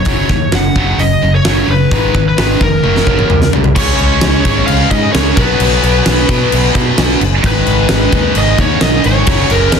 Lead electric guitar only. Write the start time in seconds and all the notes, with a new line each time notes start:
Already playing: C#5
0.55 F#5
1.00 D#5
1.35 C#5
1.71 B4
2.29 B4
2.40 B4
2.63 A#4
3.76 C#5
4.66 F5
4.91 D#5
5.12 C#5
5.35 B4
7.47 B4
8.38 D#5
8.61 C#5
8.83 D#5
9.06 C#5
9.51 A#4